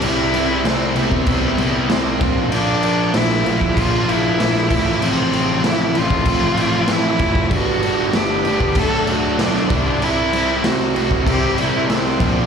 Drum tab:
CC |x-x-x-x-x-x-x-x-|x-x-x-x-x-x-x-x-|x-x-x-x-x-x-x-x-|x-x-x-x-x-x-x-x-|
SD |----o-------o---|----o-------oo--|----o-------o---|----o-------oo--|
BD |-------oo-----o-|-------oo-----o-|-------oo-----oo|o------oo-----o-|

CC |x-x-x-x-x-x-x-x-|
SD |----o-------oo--|
BD |-------oo-----o-|